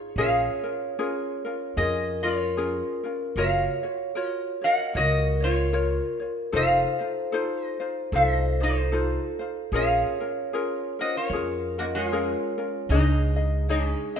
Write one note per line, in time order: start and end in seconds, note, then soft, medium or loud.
0.00 0.18 D#4 soft
0.00 0.15 F4 medium
0.00 0.18 F4 medium
0.00 0.13 G#4 medium
0.00 0.17 C#5 medium
0.00 0.22 C#5 medium
0.16 0.47 A#1 medium
0.16 0.64 C#4 medium
0.16 0.64 F4 medium
0.16 0.64 G#4 medium
0.16 1.74 G#4 medium
0.16 0.62 A#4 medium
0.16 1.73 C#5 medium
0.16 1.77 F5 medium
0.63 0.97 C#4 soft
0.63 0.98 F4 soft
0.63 0.97 A#4 medium
0.99 1.44 C#4 medium
0.99 1.45 F4 medium
0.99 1.44 G#4 medium
0.99 1.43 A#4 medium
1.45 1.77 C#4 soft
1.45 1.77 F4 medium
1.45 1.78 A#4 medium
1.77 2.80 F2 medium
1.77 2.24 C#4 medium
1.77 2.24 F4 medium
1.77 2.23 G#4 medium
1.77 2.21 G#4 medium
1.77 2.21 A#4 medium
1.77 2.23 A#4 medium
1.77 2.25 D#5 medium
2.23 2.57 C#4 soft
2.23 3.32 F4 medium
2.23 2.57 F4 soft
2.23 3.32 A#4 medium
2.23 2.57 A#4 medium
2.23 3.38 C#5 medium
2.57 3.04 C#4 medium
2.57 3.04 F4 medium
2.57 3.03 G#4 medium
2.57 3.02 A#4 medium
3.04 3.37 C#4 soft
3.04 3.36 F4 soft
3.04 3.36 A#4 soft
3.36 3.66 F#1 medium
3.36 3.83 F4 medium
3.36 3.83 F#4 medium
3.36 3.83 A#4 medium
3.36 4.60 A#4 medium
3.36 4.59 C#5 medium
3.36 3.82 C#5 medium
3.36 4.26 F5 medium
3.83 4.15 F4 soft
3.83 4.15 F#4 soft
3.83 4.15 C#5 medium
4.15 4.62 F4 medium
4.15 4.61 F#4 medium
4.15 4.61 A#4 medium
4.15 4.60 C#5 medium
4.26 4.64 D#5 medium
4.62 4.93 F#4 soft
4.62 4.95 A#4 medium
4.62 4.94 C#5 medium
4.62 4.94 D#5 medium
4.62 4.96 F#5 loud
4.93 5.99 C#2 medium
4.93 5.41 F#4 medium
4.93 5.41 A#4 medium
4.93 5.40 A#4 medium
4.93 5.39 C#5 medium
4.93 5.44 D#5 loud
4.98 5.40 F#4 medium
5.40 5.72 F4 soft
5.40 6.51 A#4 medium
5.40 5.73 C#5 medium
5.40 6.59 C#5 medium
5.45 6.52 F4 medium
5.73 6.20 F4 medium
5.73 6.20 A#4 medium
5.73 6.18 C#5 medium
6.20 6.52 F4 soft
6.20 6.52 C#5 medium
6.52 6.84 F1 medium
6.52 7.00 D#4 medium
6.52 6.99 F4 medium
6.52 7.00 A4 medium
6.52 8.10 A4 medium
6.52 6.98 C5 medium
6.52 8.10 C5 medium
6.52 7.64 F5 loud
6.99 7.32 D#4 soft
6.99 7.33 F4 soft
6.99 7.33 C5 medium
7.32 7.80 D#4 medium
7.32 7.79 F4 medium
7.32 7.79 A4 medium
7.32 7.79 C5 medium
7.64 8.15 D#5 loud
7.80 8.13 D#4 soft
7.80 8.13 F4 medium
7.80 8.13 C5 medium
8.12 9.16 C2 medium
8.12 8.60 D#4 medium
8.12 8.60 F4 medium
8.12 8.59 A4 medium
8.12 8.58 A4 medium
8.12 8.57 C5 medium
8.12 8.59 C5 medium
8.12 8.33 E5 medium
8.33 8.62 D#5 medium
8.60 8.91 D#4 soft
8.60 9.70 D#4 medium
8.60 8.92 F4 soft
8.60 9.69 A4 medium
8.60 8.93 C5 medium
8.60 9.78 C5 medium
8.92 9.39 D#4 medium
8.92 9.39 F4 medium
8.92 9.39 A4 medium
8.92 9.38 C5 medium
9.39 9.73 D#4 soft
9.39 9.73 F4 soft
9.39 9.72 C5 medium
9.72 10.02 A#1 medium
9.72 10.19 C#4 medium
9.72 10.19 F4 medium
9.72 10.19 G#4 medium
9.72 10.96 G#4 medium
9.72 10.19 A#4 medium
9.72 10.95 C#5 medium
9.72 11.01 F5 medium
10.20 10.53 C#4 soft
10.20 10.53 F4 soft
10.20 10.53 A#4 soft
10.53 10.99 C#4 medium
10.53 10.99 F4 medium
10.53 10.99 G#4 medium
10.53 10.98 A#4 medium
10.99 11.33 C#4 soft
10.99 11.33 F4 soft
10.99 11.15 F#4 medium
10.99 11.32 A#4 soft
10.99 11.15 C5 medium
10.99 11.17 D#5 medium
11.17 11.94 F4 medium
11.17 12.54 A#4 medium
11.17 12.54 C#5 medium
11.30 12.34 F2 medium
11.30 11.79 G#4 medium
11.34 11.79 C#4 medium
11.34 11.78 F4 medium
11.34 11.77 A#4 medium
11.78 11.85 A#3 medium
11.78 12.12 C#4 soft
11.78 12.12 F4 soft
11.78 11.84 F#4 medium
11.78 12.11 A#4 soft
11.78 11.87 D#5 medium
11.95 12.87 G#3 medium
11.95 12.89 F4 medium
11.95 12.87 C#5 medium
12.12 12.58 C#4 medium
12.12 12.57 F4 medium
12.12 12.58 G#4 medium
12.12 12.57 A#4 medium
12.58 12.91 C#4 soft
12.58 12.91 F4 medium
12.58 12.91 A#4 medium
12.89 13.93 C#2 loud
12.89 13.66 G#3 medium
12.89 13.72 D#4 medium
12.89 13.37 D#4 medium
12.89 13.66 G#4 medium
12.89 13.36 G#4 medium
12.89 13.37 C#5 medium
12.89 13.35 D#5 medium
13.36 13.68 D#4 soft
13.36 13.68 G#4 soft
13.36 13.69 D#5 medium
13.69 14.14 G#3 medium
13.69 13.88 D4 medium
13.69 14.16 D#4 medium
13.69 14.12 G#4 medium
13.69 14.16 G#4 medium
13.69 14.16 C#5 medium
13.69 14.15 D#5 medium
13.88 14.18 C#4 medium
14.16 14.20 C4 medium
14.16 14.20 G#4 medium
14.16 14.20 D#5 medium